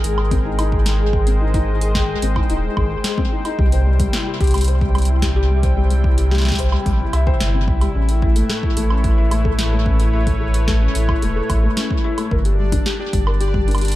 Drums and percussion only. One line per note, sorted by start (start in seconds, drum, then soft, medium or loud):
0.04 closed hi-hat medium
0.18 high woodblock medium
0.31 kick loud
0.31 closed hi-hat medium
0.59 closed hi-hat medium
0.59 high woodblock medium
0.72 kick loud
0.86 snare loud
0.86 closed hi-hat loud
1.13 kick loud
1.27 closed hi-hat medium
1.54 kick loud
1.54 closed hi-hat medium
1.81 closed hi-hat medium
1.95 kick loud
1.95 snare loud
2.22 closed hi-hat medium
2.36 kick loud
2.36 high woodblock medium
2.50 closed hi-hat medium
2.77 kick loud
2.77 high woodblock medium
3.04 snare loud
3.04 closed hi-hat loud
3.18 kick loud
3.45 closed hi-hat medium
3.45 high woodblock medium
3.59 kick loud
3.72 closed hi-hat medium
4.00 kick loud
4.00 closed hi-hat medium
4.13 snare loud
4.40 kick loud
4.40 closed hi-hat soft
4.44 closed hi-hat soft
4.47 closed hi-hat medium
4.51 closed hi-hat medium
4.54 closed hi-hat medium
4.54 high woodblock medium
4.58 closed hi-hat medium
4.61 closed hi-hat medium
4.64 closed hi-hat medium
4.68 closed hi-hat medium
4.81 kick loud
4.95 closed hi-hat soft
4.95 high woodblock medium
4.98 closed hi-hat soft
5.02 closed hi-hat medium
5.05 closed hi-hat medium
5.22 kick loud
5.22 snare loud
5.22 closed hi-hat loud
5.63 kick loud
5.63 closed hi-hat medium
5.91 closed hi-hat medium
6.04 kick loud
6.18 closed hi-hat medium
6.31 snare medium
6.35 snare medium
6.38 snare medium
6.42 snare medium
6.45 snare medium
6.48 kick loud
6.48 snare medium
6.52 snare loud
6.55 snare loud
6.55 closed hi-hat medium
6.72 high woodblock medium
6.86 kick loud
6.86 closed hi-hat medium
7.13 closed hi-hat medium
7.13 high woodblock medium
7.27 kick loud
7.41 snare loud
7.41 closed hi-hat medium
7.68 kick loud
7.81 closed hi-hat medium
7.81 high woodblock medium
8.09 closed hi-hat medium
8.22 kick loud
8.36 closed hi-hat medium
8.50 snare loud
8.63 kick loud
8.77 closed hi-hat medium
8.90 high woodblock medium
9.04 kick loud
9.04 closed hi-hat soft
9.31 closed hi-hat medium
9.31 high woodblock medium
9.45 kick loud
9.59 snare loud
9.59 closed hi-hat medium
9.86 kick loud
10.00 closed hi-hat medium
10.27 kick loud
10.27 closed hi-hat medium
10.54 closed hi-hat medium
10.68 kick loud
10.68 snare loud
10.95 closed hi-hat medium
11.09 kick loud
11.09 high woodblock medium
11.22 closed hi-hat medium
11.50 kick loud
11.50 closed hi-hat medium
11.50 high woodblock medium
11.77 snare loud
11.77 closed hi-hat medium
11.91 kick loud
12.18 closed hi-hat medium
12.18 high woodblock medium
12.31 kick loud
12.45 closed hi-hat medium
12.72 kick loud
12.72 closed hi-hat medium
12.86 snare loud
13.13 kick loud
13.13 closed hi-hat medium
13.27 high woodblock medium
13.41 closed hi-hat medium
13.54 kick loud
13.68 closed hi-hat soft
13.71 closed hi-hat soft
13.75 closed hi-hat soft
13.75 high woodblock medium
13.78 closed hi-hat medium
13.81 closed hi-hat medium
13.85 closed hi-hat medium
13.88 closed hi-hat medium
13.92 closed hi-hat medium